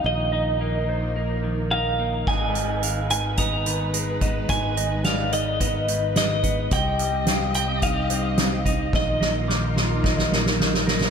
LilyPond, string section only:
\new Staff \with { instrumentName = "String section" } { \time 4/4 \key aes \lydian \tempo 4 = 108 <f bes ees'>1 | <aes ees' ces''>1~ | <aes ees' ces''>1 | <c' g' ees''>1 |
<ees' f' bes'>1 | }